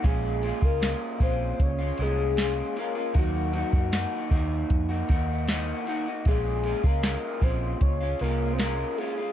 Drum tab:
HH |x-x-x-x-x-x-x-x-|x-x-x-x-x-x-x-x-|x-x-x-x-x-x-x-x-|
SD |----o-------o---|----o-------o---|----o-------o---|
BD |o--o--o-o-------|o--o--o-o-o-----|o--o--o-o-------|